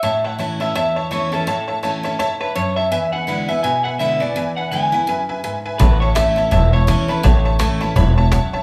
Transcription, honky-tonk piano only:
0.03 0.16 C#5 medium
0.03 0.16 E5 medium
0.03 0.16 A5 loud
0.24 0.33 C#5 medium
0.24 0.34 E5 medium
0.24 0.34 A5 medium
0.39 0.52 C#5 medium
0.39 0.52 E5 medium
0.39 0.52 A5 medium
0.61 0.70 C#5 medium
0.61 0.70 E5 medium
0.61 0.70 A5 medium
0.76 0.88 C#5 medium
0.76 0.88 E5 medium
0.76 0.88 A5 loud
0.96 1.05 C#5 medium
0.96 1.06 E5 medium
0.96 1.06 A5 medium
1.12 1.24 C#5 medium
1.12 1.24 E5 medium
1.12 1.24 A5 medium
1.33 1.42 C#5 medium
1.33 1.42 E5 medium
1.33 1.42 A5 medium
1.48 1.60 C#5 medium
1.48 1.60 E5 medium
1.48 1.60 A5 loud
1.68 1.77 C#5 medium
1.68 1.77 E5 medium
1.68 1.78 A5 medium
1.83 1.96 C#5 medium
1.83 1.96 E5 medium
1.83 1.96 A5 medium
2.04 2.14 C#5 medium
2.04 2.14 E5 medium
2.04 2.14 A5 medium
2.19 2.32 C#5 loud
2.19 2.32 E5 loud
2.19 2.32 A5 loud
2.40 2.50 C#5 medium
2.40 2.50 E5 medium
2.40 2.50 A5 medium
2.56 2.68 C#5 medium
2.56 2.68 E5 medium
2.56 2.69 A5 medium
2.77 2.86 C#5 medium
2.77 2.86 E5 medium
2.77 2.86 A5 medium
2.92 3.04 B4 medium
2.92 3.04 E5 medium
2.92 3.04 G#5 loud
3.13 3.22 B4 medium
3.13 3.22 E5 medium
3.13 3.22 G#5 medium
3.28 3.40 B4 medium
3.28 3.41 E5 medium
3.28 3.41 B5 medium
3.49 3.58 B4 medium
3.49 3.58 E5 medium
3.49 3.58 G#5 medium
3.64 3.77 B4 loud
3.64 3.77 E5 medium
3.64 3.77 G#5 loud
3.85 3.94 B4 medium
3.85 3.94 E5 medium
3.85 3.94 G#5 medium
4.00 4.13 B4 medium
4.00 4.13 E5 medium
4.00 4.13 B5 medium
4.21 4.30 B4 medium
4.21 4.30 E5 medium
4.21 4.30 G#5 medium
4.37 4.49 B4 medium
4.37 4.49 E5 medium
4.37 4.49 G#5 loud
4.58 4.66 B4 medium
4.58 4.66 E5 medium
4.58 4.66 G#5 medium
4.73 4.85 B4 medium
4.73 4.85 E5 medium
4.73 4.85 G#5 medium
4.94 5.02 B4 medium
4.94 5.02 E5 medium
4.94 5.03 G#5 medium
5.09 5.21 B4 loud
5.09 5.21 E5 medium
5.09 5.21 G#5 loud
5.29 5.38 B4 medium
5.29 5.38 E5 medium
5.29 5.38 G#5 medium
5.44 5.56 B4 medium
5.44 5.57 E5 medium
5.44 5.57 G#5 medium
5.66 5.74 B4 medium
5.66 5.74 E5 medium
5.66 5.74 G#5 medium
5.80 5.93 C#5 medium
5.80 5.93 E5 medium
5.80 5.93 A5 loud
6.02 6.10 C#5 medium
6.02 6.10 E5 medium
6.02 6.10 A5 medium
6.17 6.29 C#5 medium
6.17 6.29 E5 medium
6.17 6.29 A5 medium
6.37 6.46 C#5 medium
6.37 6.46 E5 medium
6.37 6.46 A5 medium
6.52 6.65 C#5 medium
6.52 6.65 E5 medium
6.52 6.65 A5 loud
6.73 6.82 C#5 medium
6.73 6.82 E5 medium
6.73 6.82 A5 medium
6.88 7.01 C#5 medium
6.88 7.01 E5 medium
6.88 7.01 A5 medium
7.09 7.18 C#5 medium
7.09 7.18 E5 medium
7.09 7.18 A5 medium
7.24 7.37 C#5 loud
7.24 7.37 E5 medium
7.24 7.37 A5 loud
7.45 7.54 C#5 medium
7.45 7.54 E5 medium
7.45 7.54 A5 medium
7.60 7.73 C#5 medium
7.60 7.73 E5 medium
7.60 7.73 A5 medium
7.81 7.90 C#5 medium
7.81 7.90 E5 medium
7.81 7.90 A5 medium
7.81 7.95 B5 medium
7.96 8.09 C#5 loud
7.96 8.09 E5 loud
7.96 8.16 A5 medium
7.96 8.09 B5 loud
8.18 8.26 C#5 medium
8.18 8.26 E5 medium
8.18 8.26 A5 loud
8.32 8.45 C#5 medium
8.32 8.45 E5 medium
8.32 8.63 F#5 medium
8.32 8.45 A5 medium
8.53 8.62 C#5 medium
8.53 8.63 E5 medium
8.53 8.62 A5 medium

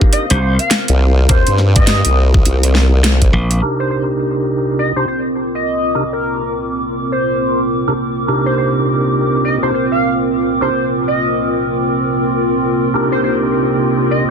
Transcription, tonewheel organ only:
0.00 0.26 D4 loud
0.00 0.26 D#4 medium
0.00 0.26 G4 medium
0.00 0.26 A#4 loud
0.30 0.39 D4 medium
0.30 0.39 D#4 medium
0.30 0.39 G4 medium
0.30 0.39 C5 loud
1.29 1.38 D4 medium
1.29 1.38 D#4 medium
1.29 1.38 G4 medium
1.29 1.38 A#4 medium
3.62 4.92 C3 medium
3.62 4.92 D4 medium
3.62 4.92 D#4 medium
3.62 4.92 G4 medium
3.62 4.92 A#4 medium
4.96 5.05 C3 medium
4.96 5.05 D4 medium
4.96 5.05 D#4 medium
4.96 5.05 G4 medium
4.96 5.05 C5 medium
5.95 6.04 C3 medium
5.95 6.04 D4 medium
5.95 6.04 D#4 medium
5.95 6.04 G4 medium
5.95 6.04 A#4 medium
7.88 7.93 C3 medium
7.88 7.93 D4 medium
7.88 7.93 D#4 medium
7.88 7.93 G4 medium
7.88 7.93 A#4 medium
8.28 9.58 C3 medium
8.28 9.58 D4 medium
8.28 9.58 D#4 medium
8.28 9.58 G4 medium
8.28 9.58 A#4 loud
9.63 9.72 C3 medium
9.63 9.71 D4 medium
9.63 9.72 D#4 medium
9.63 9.72 G4 medium
9.63 9.71 C5 medium
10.61 10.70 C3 medium
10.61 10.70 D4 medium
10.61 10.70 D#4 medium
10.61 10.70 G4 medium
10.61 10.70 A#4 medium
12.94 14.24 C3 medium
12.94 14.24 D4 medium
12.94 14.24 D#4 medium
12.94 14.24 G4 medium
12.94 14.24 A#4 loud

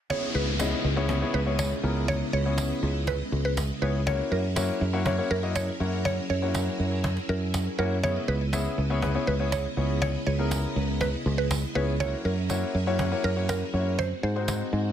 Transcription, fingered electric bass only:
0.35 0.73 C#2 medium
0.84 1.22 C#2 loud
1.34 1.72 C#2 loud
1.83 2.21 C#2 loud
2.33 2.71 C#2 medium
2.83 3.20 C#2 loud
3.32 3.70 C#2 loud
3.82 4.20 C#2 loud
4.31 4.69 F#2 medium
4.81 5.19 F#2 loud
5.31 5.68 F#2 loud
5.80 6.18 F#2 medium
6.30 6.68 F#2 loud
6.80 7.17 F#2 loud
7.29 7.67 F#2 loud
7.79 8.16 F#2 medium
8.28 8.66 C#2 loud
8.78 9.16 C#2 loud
9.28 9.65 C#2 loud
9.77 10.15 C#2 loud
10.27 10.64 C#2 medium
10.76 11.14 C#2 loud
11.26 11.64 C#2 loud
11.75 12.13 C#2 medium
12.25 12.63 F#2 loud
12.75 13.12 F#2 loud
13.24 13.62 F#2 loud
13.74 14.11 F#2 loud
14.23 14.61 G#2 loud
14.73 14.92 G#2 loud

